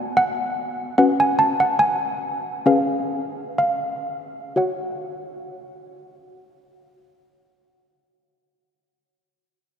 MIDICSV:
0, 0, Header, 1, 2, 480
1, 0, Start_track
1, 0, Tempo, 814111
1, 573, Time_signature, 4, 2, 24, 8
1, 1062, Tempo, 864553
1, 1542, Tempo, 917431
1, 2022, Tempo, 983607
1, 5054, End_track
2, 0, Start_track
2, 0, Title_t, "Handbells"
2, 0, Program_c, 0, 14
2, 0, Note_on_c, 0, 59, 64
2, 0, Note_on_c, 0, 66, 49
2, 0, Note_on_c, 0, 74, 47
2, 0, Note_on_c, 0, 80, 92
2, 81, Note_off_c, 0, 80, 0
2, 99, Note_on_c, 0, 78, 89
2, 549, Note_off_c, 0, 66, 0
2, 550, Note_off_c, 0, 59, 0
2, 550, Note_off_c, 0, 74, 0
2, 554, Note_off_c, 0, 78, 0
2, 578, Note_on_c, 0, 66, 44
2, 578, Note_on_c, 0, 78, 83
2, 580, Note_on_c, 0, 61, 67
2, 583, Note_on_c, 0, 71, 45
2, 696, Note_off_c, 0, 78, 0
2, 707, Note_on_c, 0, 80, 86
2, 818, Note_on_c, 0, 81, 86
2, 822, Note_off_c, 0, 80, 0
2, 940, Note_off_c, 0, 81, 0
2, 944, Note_on_c, 0, 78, 75
2, 1057, Note_on_c, 0, 80, 83
2, 1065, Note_off_c, 0, 78, 0
2, 1521, Note_off_c, 0, 80, 0
2, 1523, Note_off_c, 0, 66, 0
2, 1524, Note_off_c, 0, 61, 0
2, 1525, Note_off_c, 0, 71, 0
2, 1538, Note_on_c, 0, 61, 61
2, 1542, Note_on_c, 0, 68, 42
2, 1542, Note_on_c, 0, 77, 75
2, 1543, Note_on_c, 0, 71, 43
2, 2003, Note_off_c, 0, 77, 0
2, 2022, Note_on_c, 0, 77, 76
2, 2478, Note_off_c, 0, 61, 0
2, 2479, Note_off_c, 0, 68, 0
2, 2480, Note_off_c, 0, 71, 0
2, 2480, Note_off_c, 0, 77, 0
2, 2499, Note_on_c, 0, 66, 51
2, 2502, Note_on_c, 0, 73, 41
2, 2506, Note_on_c, 0, 78, 53
2, 4462, Note_off_c, 0, 66, 0
2, 4465, Note_off_c, 0, 73, 0
2, 4468, Note_off_c, 0, 78, 0
2, 5054, End_track
0, 0, End_of_file